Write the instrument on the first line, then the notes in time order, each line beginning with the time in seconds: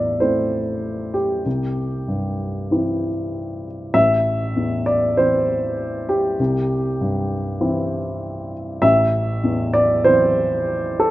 upright piano
Already playing: A1 E2 D5 E5
0.20 A3 C4 E4 C5
1.14 G4
1.46 C2
2.08 G2
2.71 E3 C4 E4
3.94 A1 E5
4.56 E2
4.86 D5
5.17 E3 C4 E4 C5
6.09 G4
6.40 C2
7.01 G2
7.61 E3 C4 E4
8.82 A1 E5
9.44 E2
9.73 D5
10.04 E3 C4 E4 C5
11.00 A4